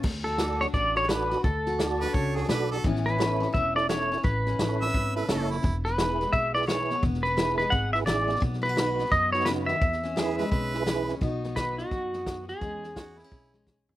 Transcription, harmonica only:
X:1
M:4/4
L:1/16
Q:"Swing" 1/4=172
K:Emix
V:1 name="Harmonica"
z16 | z6 B2 c2 G2 B2 A2 | z16 | z6 e4 B2 A2 E2- |
E z12 z3 | z16 | z16 | z4 G2 B2 B6- B z |
z16 | z4 F2 E4 z6 |]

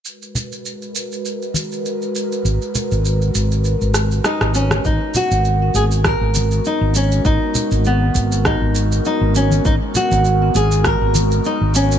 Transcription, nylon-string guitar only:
X:1
M:4/4
L:1/8
Q:"Swing 16ths" 1/4=100
K:G#m
V:1 name="Nylon-string guitar"
z8 | z6 D C | D F2 G A2 D C | D2 B,2 D2 D C |
D F2 G A2 D C |]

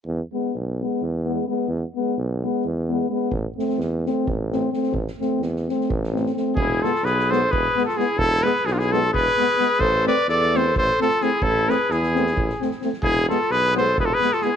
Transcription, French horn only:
X:1
M:7/8
L:1/8
Q:1/4=130
K:none
V:1 name="French horn"
z B, z B, z B, B, | z B, z B, z B, B, | z C z C z C C | z C z C z C C |
z B, z B, z B, B, | z B, z B, z B, B, | z C z C z C C | z C z C z C C |
z B, z B, z B, B, |]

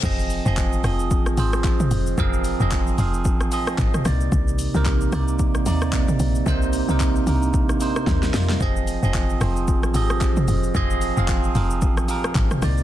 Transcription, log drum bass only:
X:1
M:4/4
L:1/16
Q:"Swing 16ths" 1/4=112
K:Fdor
V:1 name="Log drum bass" clef=bass
F,,,3 F,,,3 F,,,4 A,,,4 F,,,2 | F,,,3 F,,,3 F,,,4 z2 A,,,2 C,,2 | C,,3 C,,3 C,,4 E,,4 B,,,2 | C,,3 C,,3 C,,4 z2 E,,2 F,,2 |
F,,,3 F,,,3 F,,,4 A,,,4 F,,,2 | F,,,3 F,,,3 F,,,4 z2 A,,,2 C,,2 |]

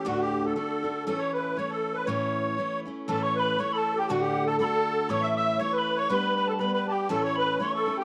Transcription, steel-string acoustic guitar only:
X:1
M:2/4
L:1/8
Q:"Swing" 1/4=119
K:Amix
V:1 name="Steel-string acoustic guitar"
[D,,A,,D,A,DF]2 [D,A,DF] [D,A,DF] | [A,,E,A,CE]2 [E,A,CE]2 | [A,,E,A,CE]2 [E,A,CE] [A,CE] | [A,,E,A,CE]2 [E,A,CE]2 |
[D,,A,,D,A,DF]2 [D,A,DF]2 | [A,,E,A,CE]2 [E,A,CE]2 | [G,B,DG]2 [G,B,DG]2 | [A,,E,A,CE]2 [E,A,CE] [A,CE] |]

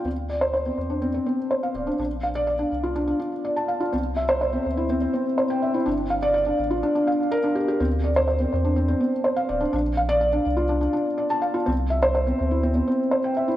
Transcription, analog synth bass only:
X:1
M:4/4
L:1/8
Q:1/4=124
K:Dm
V:1 name="Analog synth bass" clef=bass
D,,3 E,,2 z2 D,,, | B,,,3 C,,2 z3 | C,,3 D,,2 z3 | G,,,3 A,,, z4 |
D,,3 E,,2 z2 D,,, | B,,,3 C,,2 z3 | C,,3 D,,2 z3 |]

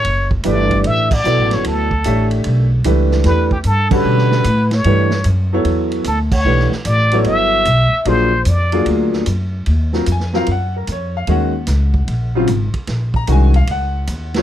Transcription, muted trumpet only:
X:1
M:4/4
L:1/8
Q:"Swing" 1/4=150
K:Edor
V:1 name="Muted trumpet"
c z d2 e d2 c | A3 z4 z | B G A B4 c- | c2 z4 A c- |
c z d2 e4 | =c2 d2 z4 | [K:Ebdor] z8 | z8 |
z8 |]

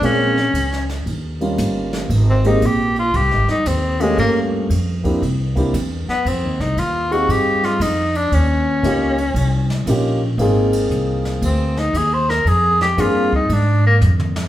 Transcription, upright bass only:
X:1
M:4/4
L:1/8
Q:"Swing" 1/4=116
K:Eb
V:1 name="Upright bass" clef=bass
B,,,2 _D,,2 E,,2 G,,,2 | A,,,2 B,,,2 (3C,, A,,, G,,, E,,2 | G,,2 F,,2 C,,2 =E,, z | (3F,, E,, C,, E,,2 G,,2 F,,2 |
E,,2 _D,,2 C,,2 B,,,2 | A,,,2 C,,2 D,,2 E,,2 | F,,2 G,,2 A,,2 F,,2 |]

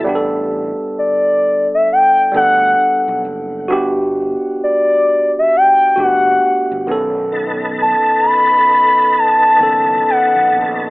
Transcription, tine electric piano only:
X:1
M:4/4
L:1/8
Q:"Swing 16ths" 1/4=66
K:Glyd
V:1 name="Tine electric piano"
[G,B,DGA]3 z2 [G,B,DA]2 z | [B,DFG]3 z2 [A,B,DFG]2 [^D,B,CA]- | [^D,B,CA]2 z3 [D,B,CA]2 z |]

